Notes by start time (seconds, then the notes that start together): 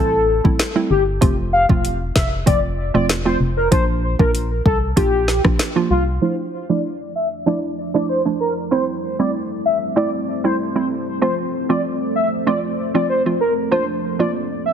Already playing: A1 G3 A3 C4 E4 A4
0.44 A1 G3 A3 C4 E4, kick
0.59 snare, closed hi-hat
0.75 G3 A3 C4 E4
0.90 G1 G4
1.21 F1 F3 A3 C4 F4, kick, closed hi-hat
1.53 F5
1.69 E1 F3 A3 C4 F4, kick
1.85 closed hi-hat
2.16 F1 E5, kick, snare
2.46 F1 F3 A3 C4 F4 D5, kick, closed hi-hat
2.94 E1 F3 A3 C4 F4 D5
3.09 snare, closed hi-hat
3.25 F3 A3 C4 F4 C5
3.40 F1
3.57 A#4
3.71 A#1 F3 A#3 D4 F4 C5, kick, closed hi-hat
4.19 A#1 F3 A#3 D4 F4 A#4, kick
4.35 closed hi-hat
4.66 C2 A4, kick
4.96 A#1 F3 A#3 D4 F4 G4, kick, closed hi-hat
5.28 snare
5.44 A#1 F3 A#3 D4 F4, kick, cross-stick
5.59 snare, closed hi-hat
5.76 F3 A#3 D4 F4
5.90 C2 F4
6.22 F3 A3 D4 E4 A4 C5 D5
6.69 F3 A3 D4 E4 D5
7.15 E5
7.46 F3 A3 D4 E4 D5
7.94 F3 A3 D4 E4 D5
8.09 C5
8.25 F3 A3 D4 E4
8.40 A#4
8.71 G3 A3 C4 E4 C5
9.19 G3 A3 C4 E4 D5
9.66 E5
9.96 G3 A3 C4 E4 D5
10.44 G3 A3 C4 E4 C5
10.75 G3 A3 C4 E4
11.22 F3 A3 C4 F4 C5
11.69 F3 A3 C4 F4 D5
12.16 E5
12.47 F3 A3 C4 F4 D5
12.94 F3 A3 C4 F4 D5
13.09 C5
13.26 F3 A3 C4 F4
13.41 A#4
13.71 F3 A#3 D4 F4 A#4 C5 D5
14.19 F3 A#3 D4 F4 D5
14.66 E5